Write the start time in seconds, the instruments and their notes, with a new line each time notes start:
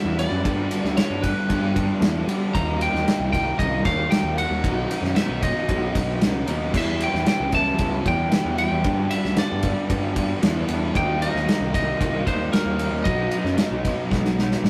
Already playing: distorted electric guitar E3 G3 B3 E4, overdriven electric guitar E3 G3 B3 E4, lead electric guitar E5
0.05 picked electric bass E2
0.16 overdriven electric guitar G3 B3 E4, lead electric guitar D5, ride
0.21 distorted electric guitar E3
0.31 picked electric bass F#2
0.44 overdriven electric guitar G2 D3 G3 B3 D4, picked electric bass G2, kick, ride
0.69 overdriven electric guitar G3 B3 D4, ride
0.84 picked electric bass D2, snare
0.95 overdriven electric guitar G2 D3 G3 B3 D4, lead electric guitar C#5, snare, ride
1.10 picked electric bass G2
1.22 overdriven electric guitar G3 B3 D4, lead electric guitar B4, kick, ride
1.48 overdriven electric guitar G2 D3 G3 B3 D4, picked electric bass G2, kick, ride
1.75 overdriven electric guitar G3 B3 D4, kick, ride
2.00 picked electric bass E2, overdriven electric guitar D3 G3 B3 D4, snare, ride
2.25 picked electric bass G3, overdriven electric guitar G3 B3 D4, ride
2.30 distorted electric guitar G2 D3
2.52 picked electric bass D#2, overdriven electric guitar D#3 G3 A#3 D#4, lead electric guitar A#5, kick, ride
2.79 overdriven electric guitar G3 A#3 D#4, lead electric guitar G5, ride
2.94 picked electric bass D#2, snare
3.04 overdriven electric guitar D#3 G3 A#3 D#4, ride
3.08 snare
3.20 picked electric bass C2
3.29 overdriven electric guitar G3 A#3 D#4, lead electric guitar G5
3.33 kick, ride
3.56 picked electric bass C2, overdriven electric guitar D#3 G3 A#3 D#4, lead electric guitar D#5, kick, ride
3.84 picked electric bass D#2, overdriven electric guitar G3 A#3 D#4, lead electric guitar F5, kick, snare, ride
4.08 overdriven electric guitar D#3 G3 A#3 D#4, lead electric guitar G5, snare, ride
4.23 picked electric bass D#2
4.35 overdriven electric guitar G3 A#3 D#4, lead electric guitar F#5, ride
4.40 distorted electric guitar D#3
4.50 picked electric bass D#2
4.61 picked electric bass B1, overdriven electric guitar B2 D#3 F#3 B3 D#4, kick, ride
4.88 overdriven electric guitar F#3 B3 D#4, ride
5.02 picked electric bass F#2, snare
5.14 overdriven electric guitar B2 D#3 F#3 B3 D#4, lead electric guitar E5, snare, ride
5.29 picked electric bass B1
5.40 overdriven electric guitar F#3 B3 D#4, lead electric guitar D#5, kick, ride
5.66 picked electric bass B1, overdriven electric guitar B2 D#3 F#3 B3 D#4, kick, ride
5.94 picked electric bass B1, overdriven electric guitar F#3 B3 D#4, kick, snare, ride
6.19 picked electric bass C#2, overdriven electric guitar D#3 F#3 B3 D#4, snare, ride
6.44 picked electric bass D#2, overdriven electric guitar F#3 B3 D#4, ride
6.48 distorted electric guitar B2 D#3
6.72 picked electric bass E2, overdriven electric guitar E3 G3 B3 E4, kick, crash
6.77 lead electric guitar E5
6.98 overdriven electric guitar G3 B3 E4, ride
7.04 lead electric guitar G5
7.14 picked electric bass E2, snare
7.25 overdriven electric guitar E3 G3 B3 E4, lead electric guitar G5, snare, ride
7.40 picked electric bass C#2
7.52 overdriven electric guitar G3 B3 E4, lead electric guitar A5, kick, ride
7.79 picked electric bass C#2, overdriven electric guitar E3 G3 B3 E4, kick, ride
8.05 picked electric bass E2, overdriven electric guitar G3 B3 E4, lead electric guitar G5, kick, ride
8.31 overdriven electric guitar E3 G3 B3 E4, snare, ride
8.45 picked electric bass E2
8.57 overdriven electric guitar G3 B3 E4, lead electric guitar G5, ride
8.61 distorted electric guitar E3
8.72 picked electric bass E2
8.82 overdriven electric guitar G2 D3 G3 B3 D4, picked electric bass G2, kick, ride
9.09 overdriven electric guitar G3 B3 D4, lead electric guitar E5, ride
9.25 picked electric bass D2, snare
9.35 overdriven electric guitar G2 D3 G3 B3 D4, lead electric guitar D5, snare, ride
9.52 picked electric bass G2
9.62 overdriven electric guitar G3 B3 D4, kick, ride
9.89 overdriven electric guitar G2 D3 G3 B3 D4, picked electric bass G2, kick, ride
10.16 overdriven electric guitar G3 B3 D4, kick, ride
10.41 picked electric bass E2, overdriven electric guitar D3 G3 B3 D4, snare, ride
10.67 picked electric bass E2, distorted electric guitar D3, overdriven electric guitar G3 B3 D4, ride
10.71 distorted electric guitar G2
10.93 picked electric bass D#2, overdriven electric guitar D#3 G3 A#3 D#4, lead electric guitar G5, kick, ride
11.19 overdriven electric guitar G3 A#3 D#4, lead electric guitar D#5, ride
11.34 picked electric bass D#2, snare
11.45 overdriven electric guitar D#3 G3 A#3 D#4, snare, ride
11.61 picked electric bass C2
11.72 overdriven electric guitar G3 A#3 D#4, lead electric guitar D#5, kick, ride
11.97 picked electric bass C2, overdriven electric guitar D#3 G3 A#3 D#4, kick, ride
12.25 picked electric bass D#2, overdriven electric guitar G3 A#3 D#4, lead electric guitar C5, kick, ride
12.51 overdriven electric guitar D#3 G3 A#3 D#4, lead electric guitar A#4, snare, ride
12.65 picked electric bass D#2
12.78 distorted electric guitar D#3, overdriven electric guitar G3 A#3 D#4, ride
12.91 picked electric bass D#2
13.03 picked electric bass B1, overdriven electric guitar B2 F#3 B3 D#4, lead electric guitar D#5, kick, ride
13.30 overdriven electric guitar F#3 B3 D#4, ride
13.44 picked electric bass F#2, snare
13.56 overdriven electric guitar B2 F#3 B3 D#4, snare, ride
13.71 picked electric bass B1
13.82 overdriven electric guitar F#3 B3 D#4, kick, ride
14.09 picked electric bass B1, overdriven electric guitar B2 F#3 B3 D#4, kick, snare
14.25 snare
14.38 overdriven electric guitar F#3 B3 D#4, snare
14.51 snare
14.63 picked electric bass A1, overdriven electric guitar B2 F#3 B3 D#4, snare